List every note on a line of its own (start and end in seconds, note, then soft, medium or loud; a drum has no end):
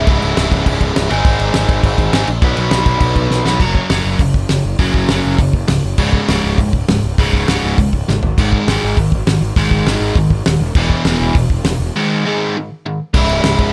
0.07 0.17 C#1 medium
0.07 1.09 C#2 loud
0.07 1.08 G#2 loud
0.07 1.09 C#3 medium
0.07 1.10 G#3 loud
0.07 1.10 E4 loud
0.07 kick loud
0.07 crash medium
0.22 0.32 C#1 loud
0.22 crash medium
0.37 0.47 C#1 loud
0.37 snare loud
0.37 crash loud
0.52 0.62 C#1 medium
0.52 kick loud
0.52 crash medium
0.66 0.76 C#1 medium
0.66 kick loud
0.66 crash loud
0.81 0.91 C#1 loud
0.81 kick medium
0.81 crash medium
0.96 1.06 C#1 medium
0.96 snare loud
0.96 crash medium
1.10 1.21 G#1 medium
1.10 2.11 G#2 medium
1.10 2.12 D#3 loud
1.10 2.12 G#3 medium
1.10 2.12 C4 medium
1.10 2.13 D#4 loud
1.10 2.13 G#4 loud
1.10 crash medium
1.25 1.35 G#1 medium
1.25 kick loud
1.25 crash medium
1.40 1.50 G#1 medium
1.40 crash medium
1.54 1.64 G#1 medium
1.54 snare loud
1.54 crash loud
1.69 1.79 G#1 medium
1.69 kick loud
1.69 crash medium
1.83 1.93 G#1 loud
1.83 kick loud
1.83 crash medium
1.98 2.08 G#1 loud
1.98 kick medium
1.98 crash medium
2.12 2.23 G#1 loud
2.12 2.27 G#2 medium
2.12 2.27 D#3 medium
2.12 2.27 G#3 medium
2.12 2.27 C4 medium
2.12 2.28 D#4 loud
2.12 2.28 G#4 medium
2.12 snare loud
2.12 crash medium
2.27 2.38 A#1 medium
2.27 crash medium
2.42 2.52 B1 medium
2.42 3.45 B2 medium
2.42 3.45 F#3 loud
2.42 3.45 B3 loud
2.42 3.45 D#4 loud
2.42 3.45 F#4 medium
2.42 3.44 B4 loud
2.42 kick loud
2.42 crash medium
2.57 2.67 B1 medium
2.57 crash medium
2.71 2.82 B1 loud
2.71 snare loud
2.71 crash medium
2.86 2.96 B1 medium
2.86 kick loud
2.86 crash medium
3.00 3.11 B1 loud
3.00 kick loud
3.00 crash medium
3.16 3.26 B1 medium
3.16 kick medium
3.16 crash medium
3.31 3.41 B1 medium
3.31 snare medium
3.45 3.61 B1 medium
3.45 3.59 B2 medium
3.45 3.59 F#3 medium
3.45 3.60 B3 medium
3.45 3.60 D#4 medium
3.45 3.60 F#4 medium
3.45 3.60 B4 medium
3.45 snare medium
3.59 3.79 F#1 medium
3.59 3.88 F#2 medium
3.59 3.89 C#3 medium
3.59 3.89 F#3 medium
3.59 kick loud
3.59 crash loud
3.75 kick medium
3.90 4.00 F#1 medium
3.90 4.19 F#2 loud
3.90 4.19 C#3 loud
3.90 4.19 F#3 loud
3.90 snare loud
3.90 open hi-hat medium
4.05 4.14 F#1 medium
4.19 4.29 F#1 medium
4.19 4.34 F#2 medium
4.19 4.34 C#3 medium
4.19 kick loud
4.19 open hi-hat medium
4.34 4.44 F#1 medium
4.34 kick medium
4.49 4.59 F#1 medium
4.49 4.63 F#2 medium
4.49 4.63 C#3 medium
4.49 snare loud
4.49 open hi-hat medium
4.65 4.74 F#1 medium
4.79 4.89 F#1 medium
4.79 5.08 F#2 medium
4.79 5.08 C#3 medium
4.79 5.09 F#3 loud
4.79 kick loud
4.79 open hi-hat medium
4.94 5.04 F#1 medium
4.94 kick medium
5.09 5.19 F#1 medium
5.09 5.38 F#2 loud
5.09 5.38 C#3 loud
5.09 5.39 F#3 loud
5.09 snare loud
5.09 open hi-hat medium
5.25 5.34 F#1 medium
5.38 5.48 F#1 medium
5.38 5.53 F#2 medium
5.38 5.53 C#3 loud
5.38 kick loud
5.38 open hi-hat medium
5.53 5.63 F#1 medium
5.53 kick medium
5.68 5.79 C#1 medium
5.68 5.82 F#2 medium
5.68 5.82 C#3 medium
5.68 snare loud
5.68 open hi-hat medium
5.84 5.93 F#1 medium
5.98 6.17 C#1 medium
5.98 6.27 C#2 medium
5.98 6.28 G#2 medium
5.98 6.28 C#3 loud
5.98 kick loud
5.98 crash loud
6.13 kick medium
6.28 6.38 C#1 loud
6.28 6.57 C#2 loud
6.28 6.58 G#2 medium
6.28 6.58 C#3 loud
6.28 snare loud
6.28 open hi-hat medium
6.44 6.53 C#1 medium
6.58 6.67 C#1 loud
6.58 6.72 C#2 medium
6.58 6.72 G#2 medium
6.58 kick loud
6.58 open hi-hat medium
6.73 6.83 C#1 medium
6.73 kick medium
6.88 6.98 C#1 medium
6.88 7.02 C#2 medium
6.88 7.02 G#2 loud
6.88 snare loud
6.88 open hi-hat medium
7.04 7.13 C#1 medium
7.18 7.27 C#1 medium
7.18 7.47 C#2 medium
7.18 7.47 G#2 loud
7.18 7.48 C#3 loud
7.18 kick loud
7.18 open hi-hat medium
7.33 7.43 C#1 medium
7.33 kick medium
7.48 7.58 C#1 medium
7.48 7.77 C#2 loud
7.48 7.77 G#2 loud
7.48 7.78 C#3 loud
7.48 snare loud
7.48 open hi-hat medium
7.64 7.73 C#1 medium
7.78 7.88 C#1 medium
7.78 7.92 C#2 medium
7.78 7.92 G#2 medium
7.78 kick loud
7.78 open hi-hat medium
7.93 8.03 C#1 medium
7.93 kick medium
8.08 8.18 G#1 medium
8.08 8.22 C#2 medium
8.08 8.22 G#2 medium
8.08 snare medium
8.23 8.32 G#1 medium
8.23 floor tom medium
8.38 8.56 G#1 medium
8.38 8.67 G#2 medium
8.38 8.67 D#3 loud
8.38 8.67 G#3 medium
8.38 kick loud
8.38 splash medium
8.38 crash loud
8.53 kick medium
8.68 8.77 G#1 medium
8.68 8.96 G#2 loud
8.68 8.96 D#3 loud
8.68 8.97 G#3 loud
8.68 snare loud
8.68 open hi-hat medium
8.84 8.93 G#1 medium
8.97 9.07 G#1 medium
8.97 9.11 G#2 medium
8.97 9.11 D#3 medium
8.97 kick loud
8.97 open hi-hat medium
9.12 9.22 G#1 medium
9.12 kick medium
9.27 9.36 G#1 medium
9.27 9.41 G#2 medium
9.27 9.41 D#3 medium
9.27 snare loud
9.27 open hi-hat medium
9.41 9.51 G#1 medium
9.56 9.66 G#1 medium
9.56 9.85 G#2 medium
9.56 9.86 D#3 loud
9.56 9.86 G#3 medium
9.56 kick loud
9.56 open hi-hat medium
9.71 9.80 G#1 medium
9.71 kick loud
9.86 9.96 G#1 medium
9.86 10.16 G#2 medium
9.86 10.16 D#3 loud
9.86 10.16 G#3 loud
9.86 snare loud
9.86 open hi-hat medium
10.00 10.10 G#1 medium
10.15 10.25 G#1 medium
10.15 10.30 G#2 medium
10.15 10.30 D#3 medium
10.15 kick loud
10.15 open hi-hat medium
10.30 10.40 G#1 medium
10.30 kick medium
10.46 10.55 D#1 medium
10.46 10.60 G#2 medium
10.46 10.60 D#3 loud
10.46 snare loud
10.46 open hi-hat medium
10.60 10.70 E1 medium
10.75 10.94 E1 medium
10.75 11.05 E2 medium
10.75 11.05 B2 loud
10.75 11.06 E3 loud
10.75 kick loud
10.75 crash loud
10.90 kick medium
11.05 11.15 E1 loud
11.05 11.35 E2 loud
11.05 11.35 B2 loud
11.05 11.36 E3 loud
11.05 snare loud
11.05 open hi-hat medium
11.20 11.29 E1 medium
11.35 11.45 E1 loud
11.35 11.49 E2 medium
11.35 11.49 B2 loud
11.35 kick loud
11.35 open hi-hat medium
11.50 11.59 E1 medium
11.50 kick medium
11.64 11.74 E1 medium
11.64 11.79 E2 medium
11.64 11.79 B2 medium
11.64 snare loud
11.64 open hi-hat medium
11.80 11.89 E1 loud
11.96 12.24 G#2 medium
11.96 12.25 D#3 loud
11.96 12.25 G#3 medium
12.25 12.54 G#2 loud
12.25 12.55 D#3 loud
12.25 12.55 G#3 loud
12.56 12.69 G#2 medium
12.56 12.69 D#3 loud
12.86 12.99 G#2 medium
12.86 12.99 D#3 medium
13.14 13.25 C#1 loud
13.14 13.73 C#2 medium
13.14 13.73 G#2 medium
13.14 13.73 C#3 medium
13.14 13.73 G#3 medium
13.14 13.73 E4 loud
13.14 kick loud
13.14 crash loud
13.29 13.39 C#1 medium
13.29 crash medium
13.44 13.54 C#1 loud
13.44 snare loud
13.44 crash loud
13.59 13.69 C#1 medium
13.59 kick medium
13.59 crash medium